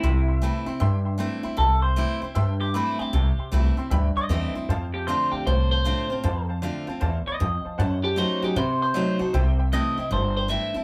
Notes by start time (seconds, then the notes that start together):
Already playing: E4
0.03 C2 C3 E5 G5 C6
0.27 E5 G5 C6
0.42 E3 A3 C4 E4 E5 G5 A5
0.66 C4 E4 E5 G5 C6, muted upright bass stroke
0.80 G2 E5 G5 C6
1.05 E5 G5 C6
1.18 E3 A3 C4 E4 E5 G5 C6
1.43 C4 E4 E5 G5 C6, muted upright bass stroke
1.57 C2 C3 A4 E5 G5 C6
1.82 C5 E5 G5 A5
1.96 E3 A3 C4 E4 E5 G5 D6
2.22 C4 E4 E5 G5 C6, muted upright bass stroke
2.35 G2 E5 G5 C6
2.60 G4 E5 G5 C6
2.74 E3 A3 C4 E4 E5 G5 C6
2.99 C4 E4 G4 E5 G5 C6, muted upright bass stroke
3.13 C2 C3 E5 G5 A5
3.39 E5 G5 C6, muted upright bass stroke
3.52 C2 E3 A3 C4 E4 E5 G5 B5
3.77 C4 E4 E5 G5 C6, muted upright bass stroke
3.90 D2 G2 E5 G5 B5
4.16 D#5 E5 G5 C6, muted upright bass stroke
4.29 E2 E3 A3 C4 E4 E5 G5 C6
4.55 C4 E4 E5 G5 C6, muted upright bass stroke
4.69 F2 C5 F5 A5
4.93 G4 C5 F5 A5
5.07 D3 A3 C4 F4 C5 F5 A5
5.32 G4 C5 F5 A5, muted upright bass stroke
5.46 C2 A2 C5 F5 A5
5.71 C5 F5 A5
5.85 D3 A3 C4 F4 C5 F5 A5
6.10 C4 F4 C5 F5 A5, muted upright bass stroke
6.23 F2 C5 F5 A5
6.49 C5 F5 A5
6.62 D3 A3 C4 F4 C5 F5 A5
6.87 C4 F4 C5 F5 A5, muted upright bass stroke
7.00 E2 C5 F5 A5
7.26 C5 D#5 F5 B5, muted upright bass stroke
7.40 F2 C5 F5 A5
7.65 C5 F5 A5, muted upright bass stroke
7.78 F#2 C5 F#5 A5
8.04 G4 C5 F#5 A5
8.16 F#3 A3 D#4 F#4 C5 F#5 A5
8.42 D#4 F#4 G4 C5 F#5 G#5, muted upright bass stroke
8.56 C3 C5 F#5 B5
8.81 C5 F#5 A5
8.94 F#3 A3 D#4 F#4 C5 F#5 A5
9.19 D#4 F#4 C5 F#5 A5, muted upright bass stroke
9.33 C2 C3 C5 E5 G5
9.59 C5 E5 G5
9.73 E3 A3 C4 E4 C5 D#5 E5 G5
9.98 C4 E4 C5 E5 G5, muted upright bass stroke
10.11 G1 G2 C5 E5 A5
10.37 C5 E5 G5
10.48 E3 A3 C4 E4 C5 E5 G5
10.74 C4 E4 C5 E5 A5, muted upright bass stroke